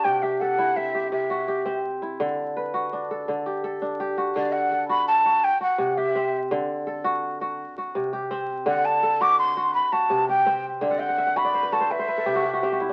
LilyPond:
<<
  \new Staff \with { instrumentName = "Flute" } { \time 12/8 \key d \mixolydian \tempo 4. = 111 g''8 e''8 fis''4 e''4 e''2 r4 | r1. | d''8 fis''4 b''8 a''4 g''8 fis''4 e''4 r8 | r1. |
fis''8 a''4 d'''8 c'''4 b''8 a''4 g''4 r8 | d''8 fis''4 b''4 a''8 e''2~ e''8 r8 | }
  \new Staff \with { instrumentName = "Kora" } { \time 12/8 \key d \mixolydian << { <fis' g'>8 g'8 a'4 c'8 g'4 fis'8 g'4. e'8~ | e'8 r8 b'4 d'8 a'4 g'8 a'4 g'8 fis'8~ | fis'8 r8 a'4. r4 fis'4 g'4. | r4 a'4. r4 fis'4 g'4. |
r4 a'4. r4 fis'4 g'4. | e''16 fis''16 g''16 fis''16 e''16 fis''16 e''16 d''16 c''16 b'16 a'16 c''16 b'16 c''16 b'16 a'16 g'16 fis'16 g'16 fis'16 g'16 fis'16 e'16 d'16 | } \\ { c4 r8 e'4 r8 c4 r8 c'4 r8 | d4 r8 fis'4 r8 d4 r8 d'4 r8 | d4 r8 fis'4 fis'8 r4 c4 c'4 | d4 r8 fis'4 fis'8 r4 c4 c'4 |
d4 r8 fis'4 fis'8 r4 c4 c'4 | d4 r8 fis'4 fis'8 r4 c4 c'4 | } >> }
>>